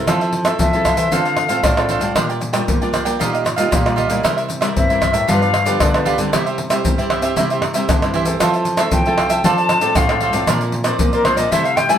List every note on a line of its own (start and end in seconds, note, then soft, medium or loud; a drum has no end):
0.00 0.42 C4 medium
0.00 0.42 E4 medium
0.00 0.42 A4 medium
0.07 0.52 F3 medium
0.07 0.57 F3 medium
0.07 0.19 F4 medium
0.07 0.20 A4 medium
0.07 0.20 C5 medium
0.07 0.20 E5 medium
0.07 pandeiro medium
0.07 tamborim medium
0.07 shaker medium
0.07 surdo medium
0.21 0.32 A4 soft
0.21 0.32 C5 soft
0.21 0.33 E5 medium
0.21 pandeiro soft
0.21 shaker soft
0.33 muted cavaquinho stroke soft
0.33 pandeiro medium
0.45 0.68 C4 medium
0.45 0.68 E4 medium
0.45 0.68 A4 medium
0.45 0.72 A4 medium
0.45 0.71 C5 medium
0.45 0.71 E5 medium
0.45 pandeiro medium
0.45 tamborim medium
0.45 shaker medium
0.59 1.09 C3 medium
0.59 0.93 F3 medium
0.59 1.14 E5 medium
0.59 pandeiro medium
0.59 shaker medium
0.59 surdo loud
0.73 1.08 C4 medium
0.73 1.08 E4 medium
0.73 0.84 A4 soft
0.73 1.09 A4 medium
0.73 0.85 C5 soft
0.73 0.85 E5 medium
0.73 pandeiro soft
0.73 shaker soft
0.85 0.97 F4 soft
0.85 0.98 A4 soft
0.85 0.97 C5 medium
0.85 0.96 E5 medium
0.85 pandeiro medium
0.85 tamborim medium
0.85 shaker medium
0.85 surdo medium
0.97 1.09 E3 medium
0.97 1.11 A4 medium
0.97 1.10 C5 medium
0.97 1.10 E5 medium
0.97 pandeiro medium
0.97 shaker medium
1.11 1.45 D3 medium
1.11 1.61 D3 medium
1.11 1.47 C4 medium
1.11 1.24 D4 medium
1.11 1.47 F4 medium
1.11 1.24 A4 medium
1.11 1.47 A4 medium
1.11 1.24 C5 medium
1.11 1.66 F5 medium
1.11 1.24 F5 medium
1.11 pandeiro medium
1.11 shaker medium
1.11 surdo medium
1.25 1.35 A4 soft
1.25 1.36 C5 soft
1.25 1.36 F5 soft
1.25 pandeiro soft
1.25 shaker soft
1.37 muted cavaquinho stroke soft
1.37 pandeiro medium
1.37 tamborim medium
1.48 1.61 A2 medium
1.48 1.72 C4 medium
1.48 1.73 F4 medium
1.48 1.62 A4 medium
1.48 1.73 A4 medium
1.48 1.62 C5 medium
1.48 1.62 F5 medium
1.48 pandeiro medium
1.48 shaker medium
1.63 1.97 A2 medium
1.63 2.13 A2 medium
1.63 1.88 D4 soft
1.63 1.88 A4 medium
1.63 1.89 C5 soft
1.63 2.16 D5 medium
1.63 1.89 F5 soft
1.63 pandeiro medium
1.63 tamborim medium
1.63 shaker medium
1.63 surdo loud
1.77 1.99 C4 medium
1.77 1.99 F4 medium
1.77 1.99 A4 medium
1.77 pandeiro soft
1.77 tamborim medium
1.77 shaker soft
1.89 2.02 D4 medium
1.89 2.01 A4 medium
1.89 2.01 C5 medium
1.89 2.00 F5 medium
1.89 pandeiro medium
1.89 shaker medium
2.01 2.13 A2 medium
2.01 2.50 G3 medium
2.01 2.50 D4 medium
2.01 2.51 F4 medium
2.01 2.15 A4 soft
2.01 2.15 C5 soft
2.01 2.14 F5 soft
2.01 pandeiro medium
2.01 shaker medium
2.15 2.60 A#2 medium
2.15 2.66 A#2 medium
2.15 2.28 D4 medium
2.15 2.28 A#4 medium
2.15 2.28 D5 medium
2.15 2.28 G5 medium
2.15 pandeiro medium
2.15 tamborim medium
2.15 shaker medium
2.15 surdo medium
2.29 2.40 A#4 soft
2.29 2.40 D5 soft
2.29 2.41 G5 medium
2.29 pandeiro soft
2.29 shaker soft
2.41 muted cavaquinho stroke soft
2.41 pandeiro medium
2.41 shaker medium
2.53 2.76 G3 medium
2.53 2.76 D4 medium
2.53 2.76 F4 medium
2.53 2.80 A#4 medium
2.53 2.79 D5 medium
2.53 2.79 G5 medium
2.53 pandeiro medium
2.53 tamborim medium
2.53 shaker medium
2.68 3.18 F3 medium
2.68 3.01 A#3 medium
2.68 pandeiro medium
2.68 shaker medium
2.68 surdo loud
2.82 3.16 G3 medium
2.82 3.16 D4 medium
2.82 3.17 F4 medium
2.82 2.92 A#4 soft
2.82 2.93 D5 soft
2.82 2.93 G5 soft
2.82 pandeiro soft
2.82 shaker soft
2.93 3.05 D4 medium
2.93 3.05 A#4 medium
2.93 3.05 D5 medium
2.93 3.04 G5 medium
2.93 pandeiro medium
2.93 tamborim medium
2.93 shaker medium
3.05 3.17 A#3 medium
3.05 3.19 A#4 medium
3.05 3.18 D5 medium
3.05 3.18 G5 medium
3.05 pandeiro medium
3.05 shaker medium
3.19 3.53 A#2 medium
3.19 3.70 A#2 medium
3.19 3.55 G3 medium
3.19 3.55 D#4 medium
3.19 3.32 F4 medium
3.19 3.56 F4 medium
3.19 3.32 G4 medium
3.19 3.32 D#5 medium
3.19 3.32 F5 medium
3.19 pandeiro medium
3.19 shaker medium
3.19 surdo medium
3.33 3.44 G4 soft
3.33 3.44 D#5 soft
3.33 3.44 F5 medium
3.33 pandeiro soft
3.33 shaker soft
3.44 muted cavaquinho stroke soft
3.44 pandeiro medium
3.44 tamborim medium
3.44 shaker medium
3.56 3.69 A#2 medium
3.56 3.80 G3 medium
3.56 3.81 D#4 medium
3.56 3.81 F4 medium
3.56 3.71 G4 medium
3.56 3.70 D#5 medium
3.56 3.70 F5 medium
3.56 pandeiro medium
3.56 shaker medium
3.71 4.05 A#2 medium
3.71 4.22 A#2 medium
3.71 3.95 F4 medium
3.71 3.96 G4 medium
3.71 3.96 D#5 medium
3.71 3.96 F5 medium
3.71 pandeiro medium
3.71 tamborim medium
3.71 shaker medium
3.71 surdo loud
3.85 4.07 G3 medium
3.85 4.07 D#4 medium
3.85 4.07 F4 medium
3.85 pandeiro soft
3.85 tamborim medium
3.85 shaker soft
3.96 4.09 F4 medium
3.96 4.09 G4 medium
3.96 4.08 D#5 medium
3.96 4.08 F5 medium
3.96 pandeiro medium
4.09 4.21 A#2 medium
4.09 4.58 G3 medium
4.09 4.59 A#3 medium
4.09 4.59 E4 medium
4.09 4.23 G4 soft
4.09 4.22 D#5 soft
4.09 4.22 F5 soft
4.09 pandeiro medium
4.09 shaker medium
4.23 4.68 C3 medium
4.23 4.74 C3 medium
4.23 4.36 E4 medium
4.23 4.36 A#4 medium
4.23 4.36 C5 medium
4.23 4.36 E5 medium
4.23 pandeiro medium
4.23 tamborim medium
4.23 shaker medium
4.23 surdo medium
4.37 4.47 A#4 soft
4.37 4.48 C5 soft
4.37 4.48 E5 medium
4.37 pandeiro soft
4.37 shaker soft
4.48 muted cavaquinho stroke soft
4.48 pandeiro medium
4.48 shaker medium
4.61 4.85 G3 medium
4.61 4.85 A#3 medium
4.61 4.85 E4 medium
4.61 4.88 A#4 medium
4.61 4.87 C5 medium
4.61 4.87 E5 medium
4.61 pandeiro medium
4.61 tamborim medium
4.61 shaker medium
4.76 5.26 G2 medium
4.76 5.10 C4 medium
4.76 5.30 E5 medium
4.76 pandeiro medium
4.76 shaker medium
4.76 surdo loud
4.89 5.25 G3 medium
4.89 5.25 A#3 medium
4.89 5.25 E4 medium
4.89 5.00 A#4 soft
4.89 5.01 C5 soft
4.89 5.01 E5 medium
4.89 pandeiro soft
4.89 shaker soft
5.01 5.14 E4 soft
5.01 5.13 A#4 medium
5.01 5.13 C5 medium
5.01 5.12 E5 medium
5.01 pandeiro medium
5.01 tamborim medium
5.01 shaker medium
5.01 surdo medium
5.13 5.25 A2 medium
5.13 5.27 A#4 medium
5.13 5.27 C5 medium
5.13 5.26 E5 medium
5.13 pandeiro medium
5.13 shaker medium
5.28 5.62 G2 medium
5.28 5.78 G2 medium
5.28 5.53 F3 medium
5.28 5.53 B3 medium
5.28 5.53 D4 medium
5.28 5.40 F4 medium
5.28 5.40 G4 medium
5.28 5.40 B4 medium
5.28 5.40 D5 medium
5.28 5.82 F5 medium
5.28 pandeiro medium
5.28 shaker medium
5.28 surdo medium
5.41 5.52 G4 soft
5.41 5.53 B4 soft
5.41 5.53 D5 medium
5.41 pandeiro soft
5.41 shaker soft
5.53 muted cavaquinho stroke soft
5.53 pandeiro medium
5.53 tamborim medium
5.65 5.78 D3 medium
5.65 5.89 F3 medium
5.65 5.89 B3 medium
5.65 5.89 D4 medium
5.65 5.79 G4 medium
5.65 5.79 B4 medium
5.65 5.78 D5 medium
5.65 pandeiro medium
5.65 shaker medium
5.80 6.14 D3 medium
5.80 6.30 D3 medium
5.80 6.04 F4 medium
5.80 6.05 G4 soft
5.80 6.05 B4 medium
5.80 6.33 D5 medium
5.80 6.06 D5 medium
5.80 pandeiro medium
5.80 tamborim medium
5.80 shaker medium
5.80 surdo loud
5.94 6.16 F3 medium
5.94 6.16 B3 medium
5.94 6.16 D4 medium
5.94 pandeiro soft
5.94 tamborim medium
5.94 shaker soft
6.05 6.18 F4 medium
6.05 6.18 G4 medium
6.05 6.18 B4 medium
6.05 6.17 D5 medium
6.05 pandeiro medium
6.18 6.30 D3 medium
6.18 6.67 G3 medium
6.18 6.67 C4 medium
6.18 6.67 E4 medium
6.18 6.32 G4 soft
6.18 6.31 B4 soft
6.18 6.31 D5 soft
6.18 pandeiro medium
6.18 shaker medium
6.33 6.77 C3 medium
6.33 6.82 C3 medium
6.33 6.44 E4 medium
6.33 6.45 G4 medium
6.33 6.45 C5 medium
6.33 6.45 E5 medium
6.33 pandeiro medium
6.33 tamborim medium
6.33 shaker medium
6.33 surdo medium
6.46 6.57 G4 soft
6.46 6.58 C5 soft
6.46 6.58 E5 medium
6.46 pandeiro soft
6.46 shaker soft
6.58 muted cavaquinho stroke soft
6.58 pandeiro medium
6.70 6.93 G3 medium
6.70 6.93 C4 medium
6.70 6.93 E4 medium
6.70 6.97 G4 medium
6.70 6.96 C5 medium
6.70 6.96 E5 medium
6.70 pandeiro medium
6.70 tamborim medium
6.70 shaker medium
6.85 7.34 G2 medium
6.85 7.18 C4 medium
6.85 pandeiro medium
6.85 shaker medium
6.85 surdo loud
6.98 7.32 G3 medium
6.98 7.33 C4 medium
6.98 7.33 E4 medium
6.98 7.09 G4 soft
6.98 7.10 C5 soft
6.98 7.10 E5 medium
6.98 pandeiro soft
6.98 shaker soft
7.10 7.22 E4 medium
7.10 7.22 G4 medium
7.10 7.22 C5 medium
7.10 7.21 E5 medium
7.10 pandeiro medium
7.10 tamborim medium
7.22 7.34 C4 medium
7.22 7.36 G4 medium
7.22 7.35 C5 medium
7.22 7.35 E5 medium
7.22 pandeiro medium
7.22 shaker medium
7.36 7.86 C3 medium
7.36 7.59 C3 medium
7.36 7.71 G3 medium
7.36 7.72 C4 medium
7.36 7.48 E4 medium
7.36 7.72 E4 medium
7.36 7.49 G4 medium
7.36 7.49 C5 medium
7.36 7.49 E5 medium
7.36 pandeiro medium
7.36 shaker medium
7.36 surdo medium
7.50 7.62 G4 soft
7.50 7.63 C5 soft
7.50 7.62 E5 soft
7.50 pandeiro soft
7.50 shaker soft
7.62 7.86 C3 medium
7.62 muted cavaquinho stroke soft
7.62 pandeiro medium
7.62 tamborim medium
7.74 7.97 G3 medium
7.74 7.97 C4 medium
7.74 7.97 E4 medium
7.74 7.88 G4 medium
7.74 7.87 C5 medium
7.74 7.87 E5 medium
7.74 pandeiro medium
7.74 shaker medium
7.89 8.38 G2 medium
7.89 8.12 D3 medium
7.89 8.12 E4 soft
7.89 8.13 G4 medium
7.89 8.14 C5 medium
7.89 8.14 E5 soft
7.89 pandeiro medium
7.89 tamborim medium
7.89 shaker medium
7.89 surdo loud
8.02 8.24 G3 medium
8.02 8.24 C4 medium
8.02 8.24 E4 medium
8.02 pandeiro soft
8.02 tamborim medium
8.02 shaker soft
8.14 8.37 E3 medium
8.14 8.26 E4 medium
8.14 8.26 G4 medium
8.14 8.25 C5 medium
8.14 8.25 E5 medium
8.14 pandeiro medium
8.25 8.75 C4 medium
8.25 8.75 E4 medium
8.25 8.39 G4 soft
8.25 8.75 A4 medium
8.25 8.39 C5 soft
8.25 8.39 E5 soft
8.25 pandeiro medium
8.25 shaker medium
8.40 8.84 F3 loud
8.40 8.90 F3 medium
8.40 8.52 F4 medium
8.40 8.53 A4 medium
8.40 8.53 C5 medium
8.40 8.53 E5 medium
8.40 pandeiro medium
8.40 tamborim medium
8.40 shaker medium
8.40 surdo medium
8.54 8.65 A4 soft
8.54 8.66 C5 soft
8.54 8.66 E5 soft
8.54 pandeiro soft
8.54 shaker soft
8.65 muted cavaquinho stroke soft
8.65 pandeiro medium
8.65 shaker medium
8.77 9.01 C4 medium
8.77 9.01 E4 medium
8.77 9.01 A4 medium
8.77 9.05 A4 medium
8.77 9.04 C5 medium
8.77 9.04 E5 medium
8.77 pandeiro medium
8.77 tamborim medium
8.77 shaker medium
8.92 9.42 C3 medium
8.92 9.25 F3 medium
8.92 9.46 G5 medium
8.92 pandeiro medium
8.92 shaker medium
8.92 surdo loud
9.06 9.41 C4 medium
9.06 9.41 E4 medium
9.06 9.41 A4 medium
9.06 9.17 A4 soft
9.06 9.18 C5 soft
9.06 9.18 E5 medium
9.06 pandeiro soft
9.06 shaker soft
9.18 9.30 F4 medium
9.18 9.30 A4 medium
9.18 9.30 C5 medium
9.18 9.29 E5 medium
9.18 pandeiro medium
9.18 tamborim medium
9.29 9.41 F3 medium
9.29 9.43 A4 medium
9.29 9.43 C5 medium
9.29 9.42 E5 medium
9.29 pandeiro medium
9.29 shaker medium
9.44 9.93 F3 medium
9.44 9.77 F3 medium
9.44 9.79 C4 medium
9.44 9.79 D4 medium
9.44 9.56 F4 medium
9.44 9.56 A4 medium
9.44 9.79 A4 medium
9.44 9.57 C5 medium
9.44 9.57 D5 medium
9.44 9.98 A5 loud
9.44 pandeiro medium
9.44 shaker medium
9.44 surdo medium
9.58 9.69 A4 soft
9.58 9.70 C5 soft
9.58 9.70 D5 medium
9.58 pandeiro soft
9.58 shaker soft
9.69 muted cavaquinho stroke soft
9.69 pandeiro medium
9.69 tamborim medium
9.69 shaker medium
9.81 9.93 A2 medium
9.81 10.04 C4 medium
9.81 10.04 D4 medium
9.81 10.04 A4 medium
9.81 9.95 A4 medium
9.81 9.95 C5 medium
9.81 9.94 D5 medium
9.81 pandeiro medium
9.81 shaker medium
9.95 10.29 A2 loud
9.95 10.32 F3 medium
9.95 10.20 F4 medium
9.95 10.21 A4 medium
9.95 10.22 C5 medium
9.95 10.22 D5 medium
9.95 10.48 F5 medium
9.95 pandeiro medium
9.95 tamborim medium
9.95 shaker medium
9.95 surdo loud
10.09 10.32 C4 medium
10.09 10.32 D4 medium
10.09 10.32 A4 medium
10.09 pandeiro soft
10.09 tamborim medium
10.09 shaker soft
10.21 10.34 F4 medium
10.21 10.34 A4 medium
10.21 10.33 C5 medium
10.21 10.33 D5 medium
10.21 pandeiro medium
10.33 10.45 A2 medium
10.33 10.82 F3 medium
10.33 10.82 C4 medium
10.33 10.82 D4 medium
10.33 10.47 A4 soft
10.33 10.47 C5 soft
10.33 10.46 D5 medium
10.33 pandeiro medium
10.33 shaker medium
10.47 10.97 A#2 medium
10.47 10.92 A#2 medium
10.47 10.60 D4 medium
10.47 10.60 A#4 medium
10.47 10.61 C5 medium
10.47 10.61 D5 medium
10.47 pandeiro medium
10.47 tamborim medium
10.47 shaker medium
10.47 surdo medium
10.61 10.73 A#4 soft
10.61 10.73 C5 soft
10.61 10.73 D5 medium
10.61 pandeiro soft
10.61 shaker soft
10.72 muted cavaquinho stroke soft
10.72 pandeiro medium
10.84 10.99 F3 medium
10.84 11.21 C4 medium
10.84 11.21 D4 medium
10.84 11.11 A#4 medium
10.84 11.11 C5 medium
10.84 11.11 D5 medium
10.84 pandeiro medium
10.84 tamborim medium
10.84 shaker medium
10.99 11.24 F3 medium
10.99 11.33 A#3 medium
10.99 pandeiro medium
10.99 shaker medium
10.99 surdo loud
11.13 11.26 A#4 medium
11.13 11.24 A#4 soft
11.13 11.25 C5 soft
11.13 11.25 D5 medium
11.13 pandeiro soft
11.13 shaker soft
11.25 11.47 F3 medium
11.25 11.47 C4 medium
11.25 11.37 D4 soft
11.25 11.47 D4 medium
11.25 11.37 A#4 medium
11.25 11.38 C5 medium
11.25 11.36 C5 medium
11.25 11.35 D5 medium
11.25 pandeiro medium
11.25 tamborim medium
11.37 11.49 A#2 medium
11.37 11.50 A#4 medium
11.37 11.50 C5 medium
11.37 11.50 D5 medium
11.37 11.53 D#5 medium
11.37 pandeiro medium
11.37 shaker medium
11.51 11.98 C3 medium
11.51 11.84 C3 medium
11.51 11.86 G3 medium
11.51 11.86 A3 medium
11.51 11.64 E4 medium
11.51 11.86 E4 medium
11.51 11.64 A4 medium
11.51 11.64 C5 medium
11.51 11.67 E5 medium
11.51 11.63 E5 medium
11.51 pandeiro medium
11.51 shaker medium
11.51 surdo medium
11.64 11.76 A4 soft
11.64 11.76 C5 soft
11.64 11.76 E5 medium
11.64 11.78 F5 medium
11.64 pandeiro soft
11.64 shaker soft
11.77 11.91 G5 loud
11.77 muted cavaquinho stroke soft
11.77 pandeiro medium
11.77 tamborim medium
11.77 shaker medium
11.88 11.98 G3 medium
11.88 11.98 A3 medium
11.88 11.98 E4 medium
11.88 11.98 A4 medium
11.88 11.98 C5 medium
11.88 11.98 E5 medium
11.88 11.98 G#5 medium
11.88 pandeiro medium
11.88 shaker medium